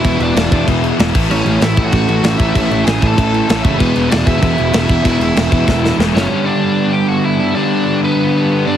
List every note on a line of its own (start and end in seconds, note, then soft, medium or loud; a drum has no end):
0.00 0.34 E3 loud
0.00 0.18 E4 medium
0.00 0.21 E5 medium
0.04 0.16 E1 medium
0.04 0.35 E2 loud
0.04 0.35 B2 loud
0.04 0.34 G#3 loud
0.04 0.34 B3 loud
0.04 0.35 E4 loud
0.04 kick loud
0.04 crash medium
0.19 0.31 E1 loud
0.19 0.65 D4 medium
0.19 0.65 D5 medium
0.19 crash medium
0.34 0.47 E1 medium
0.34 0.52 E2 medium
0.34 0.51 B2 loud
0.34 0.52 E3 loud
0.34 0.51 G#3 medium
0.34 0.50 B3 loud
0.34 0.51 E4 loud
0.34 snare loud
0.34 crash medium
0.52 0.63 E1 loud
0.52 0.66 E2 medium
0.52 0.67 B2 loud
0.52 0.66 E3 medium
0.52 0.66 G#3 medium
0.52 0.67 B3 loud
0.52 0.68 E4 loud
0.52 kick loud
0.52 crash medium
0.67 0.90 E1 medium
0.67 0.97 E2 loud
0.67 0.98 B2 loud
0.67 0.98 E3 loud
0.67 0.98 G#3 loud
0.67 0.98 B3 loud
0.67 0.99 E4 loud
0.67 kick medium
0.67 crash medium
0.83 0.97 E3 medium
0.83 0.98 G#3 medium
0.83 0.98 B3 medium
0.83 0.99 E4 medium
0.83 crash medium
0.98 1.10 E1 medium
0.98 1.13 E2 medium
0.98 1.14 B2 loud
0.98 1.16 E3 loud
0.98 1.13 G#3 loud
0.98 1.14 B3 loud
0.98 1.16 E4 loud
0.98 snare loud
0.98 crash medium
1.15 1.26 A1 medium
1.15 1.29 A2 loud
1.15 1.30 E3 loud
1.15 1.31 A3 medium
1.15 1.31 E4 loud
1.15 kick loud
1.15 crash loud
1.29 1.41 A1 loud
1.29 1.61 A2 medium
1.29 1.61 E3 loud
1.29 1.62 A3 loud
1.29 1.59 C#4 medium
1.29 1.63 C#4 loud
1.29 1.63 E4 loud
1.29 1.62 C#5 loud
1.29 crash loud
1.45 1.57 A1 medium
1.45 crash medium
1.61 1.72 A1 medium
1.61 1.77 A2 medium
1.61 1.78 E3 medium
1.61 1.77 A3 loud
1.61 1.76 C#4 loud
1.61 1.84 E4 medium
1.61 1.76 E4 medium
1.61 1.83 E5 medium
1.61 snare loud
1.61 crash medium
1.77 1.88 A1 loud
1.77 1.91 A2 medium
1.77 1.92 E3 medium
1.77 1.91 A3 medium
1.77 1.92 C#4 loud
1.77 1.93 E4 loud
1.77 kick loud
1.77 crash medium
1.84 2.36 F#4 medium
1.84 2.37 F#5 medium
1.92 2.04 A1 medium
1.92 2.22 A2 loud
1.92 2.24 E3 loud
1.92 2.24 A3 loud
1.92 2.24 C#4 loud
1.92 2.25 E4 loud
1.92 kick medium
1.92 crash medium
2.08 2.19 A1 medium
2.08 2.22 A2 medium
2.08 2.24 E3 medium
2.08 2.23 A3 medium
2.08 2.23 C#4 medium
2.08 2.25 E4 medium
2.08 crash medium
2.23 2.35 A1 medium
2.23 2.40 A2 medium
2.23 2.40 E3 loud
2.23 2.40 A3 loud
2.23 2.39 C#4 medium
2.23 2.40 E4 loud
2.23 snare loud
2.23 crash medium
2.38 2.51 A1 medium
2.38 2.54 A2 medium
2.38 2.55 E3 medium
2.38 2.55 A3 loud
2.38 2.55 C#4 loud
2.38 2.56 E4 medium
2.38 2.54 E4 medium
2.38 2.52 E5 medium
2.38 kick loud
2.38 crash medium
2.53 2.66 A1 loud
2.53 2.85 A2 medium
2.53 2.86 E3 loud
2.53 2.86 A3 loud
2.53 2.86 C#4 medium
2.53 2.84 E4 medium
2.53 2.87 E4 loud
2.53 2.86 E5 loud
2.53 kick loud
2.53 crash medium
2.71 2.82 A1 loud
2.71 crash medium
2.84 2.98 A1 medium
2.84 3.01 A2 loud
2.84 3.03 E3 loud
2.84 3.01 A3 medium
2.84 3.01 C#4 loud
2.84 3.01 E4 loud
2.84 3.08 G#4 medium
2.84 3.06 G#5 medium
2.84 snare loud
2.84 crash medium
3.01 3.13 A1 loud
3.01 3.16 A2 medium
3.01 3.17 E3 medium
3.01 3.17 A3 medium
3.01 3.17 C#4 loud
3.01 3.19 E4 loud
3.01 kick loud
3.01 crash medium
3.07 3.61 A4 medium
3.07 3.64 A5 loud
3.18 3.40 A1 medium
3.18 3.47 A2 loud
3.18 3.48 E3 loud
3.18 3.48 A3 loud
3.18 3.48 C#4 medium
3.18 3.49 E4 loud
3.18 kick loud
3.18 crash medium
3.32 3.47 A2 medium
3.32 3.48 E3 medium
3.32 3.48 A3 medium
3.32 3.48 C#4 medium
3.32 3.50 E4 medium
3.32 crash medium
3.48 3.61 A1 loud
3.48 3.65 A2 medium
3.48 3.65 E3 medium
3.48 3.64 A3 loud
3.48 3.63 C#4 loud
3.48 3.64 E4 medium
3.48 snare loud
3.48 crash medium
3.62 3.76 F#1 medium
3.62 3.80 A2 medium
3.62 3.78 E3 medium
3.62 3.78 A3 medium
3.62 3.78 C#4 loud
3.62 3.79 E4 medium
3.62 3.80 E5 medium
3.62 kick loud
3.62 crash medium
3.78 3.91 E1 medium
3.78 4.10 E2 loud
3.78 4.09 B2 loud
3.78 4.11 E3 loud
3.78 4.11 G#3 loud
3.78 4.11 B3 loud
3.78 4.10 B3 medium
3.78 4.12 E4 loud
3.78 4.09 B4 loud
3.78 kick loud
3.78 crash medium
3.95 4.07 E1 loud
3.95 crash medium
4.10 4.23 E1 medium
4.10 4.27 E2 medium
4.10 4.26 B2 loud
4.10 4.27 E3 medium
4.10 4.26 G#3 loud
4.10 4.26 B3 loud
4.10 4.27 D4 medium
4.10 4.26 E4 loud
4.10 4.27 D5 loud
4.10 snare loud
4.10 crash medium
4.26 4.38 E1 medium
4.26 4.40 E2 medium
4.26 4.40 B2 medium
4.26 4.40 E3 medium
4.26 4.41 G#3 medium
4.26 4.42 B3 medium
4.26 4.41 E4 loud
4.26 5.96 E4 medium
4.26 5.95 E5 medium
4.26 kick loud
4.26 crash medium
4.41 4.54 E1 medium
4.41 4.71 E2 loud
4.41 4.72 B2 loud
4.41 4.72 E3 loud
4.41 4.72 G#3 loud
4.41 4.74 B3 medium
4.41 4.73 E4 loud
4.41 kick loud
4.41 crash medium
4.57 4.70 E1 medium
4.57 4.71 E3 medium
4.57 4.72 G#3 medium
4.57 4.74 B3 loud
4.57 4.72 E4 loud
4.57 crash medium
4.72 4.85 E1 medium
4.72 4.87 E2 medium
4.72 4.87 B2 loud
4.72 4.88 E3 medium
4.72 4.88 G#3 loud
4.72 4.88 B3 loud
4.72 4.88 E4 loud
4.72 snare loud
4.72 crash loud
4.89 5.01 E1 loud
4.89 5.02 E2 medium
4.89 5.03 B2 loud
4.89 5.02 E3 medium
4.89 5.03 G#3 medium
4.89 5.03 B3 medium
4.89 5.03 E4 medium
4.89 kick loud
4.89 crash medium
5.03 5.16 E1 loud
5.03 5.34 E2 medium
5.03 5.34 B2 loud
5.03 5.35 E3 loud
5.03 5.35 G#3 loud
5.03 5.35 B3 loud
5.03 5.35 E4 loud
5.03 kick loud
5.03 crash loud
5.19 5.31 E1 loud
5.19 crash medium
5.35 5.48 E1 medium
5.35 5.51 E2 medium
5.35 5.51 B2 medium
5.35 5.51 E3 medium
5.35 5.51 G#3 medium
5.35 5.51 B3 medium
5.35 5.50 E4 loud
5.35 snare loud
5.35 crash medium
5.51 5.63 E1 loud
5.51 5.66 E2 medium
5.51 5.66 B2 medium
5.51 5.65 E3 medium
5.51 5.66 G#3 medium
5.51 5.66 B3 medium
5.51 5.67 E4 medium
5.51 kick medium
5.51 crash medium
5.66 5.90 E1 medium
5.66 5.97 E2 loud
5.66 5.98 B2 loud
5.66 5.98 E3 loud
5.66 5.98 G#3 medium
5.66 5.98 B3 loud
5.66 5.99 E4 loud
5.66 kick medium
5.66 snare medium
5.83 5.97 E3 medium
5.83 5.98 G#3 medium
5.83 5.98 B3 medium
5.83 5.98 E4 medium
5.83 snare medium
5.98 6.10 E1 medium
5.98 6.14 E2 medium
5.98 6.13 B2 loud
5.98 6.13 E3 medium
5.98 6.14 G#3 medium
5.98 6.13 B3 loud
5.98 6.12 E4 loud
5.98 snare loud
6.13 6.26 F#1 loud
6.13 6.28 E2 medium
6.13 6.29 B2 medium
6.13 6.29 E3 medium
6.13 6.30 G#3 medium
6.13 6.29 B3 medium
6.13 6.45 C#4 medium
6.13 6.29 E4 loud
6.13 6.46 C#5 medium
6.13 snare loud
6.29 7.39 G2 medium
6.29 7.39 D3 medium
6.29 7.39 G3 medium
6.29 7.38 B3 medium
6.29 7.39 D4 loud
6.46 6.91 D4 medium
6.46 6.95 D5 medium
6.93 7.09 G4 medium
6.93 7.08 G5 medium
7.09 7.24 F#4 medium
7.09 7.24 F#5 medium
7.24 7.54 E4 medium
7.24 7.57 E5 medium
7.39 7.55 G2 medium
7.39 7.55 D3 medium
7.39 7.55 G3 medium
7.39 7.55 B3 medium
7.39 7.58 D4 medium
7.55 8.65 G2 medium
7.55 8.65 D3 medium
7.55 8.65 G3 loud
7.55 8.65 B3 medium
7.55 8.00 D4 medium
7.55 8.65 D4 medium
7.55 7.99 D5 loud
8.04 8.63 B3 medium
8.04 8.67 B4 medium
8.65 8.77 G2 medium
8.65 8.77 D3 medium
8.65 8.77 G3 medium
8.65 8.77 B3 medium
8.65 8.77 D4 medium
8.65 8.77 D5 medium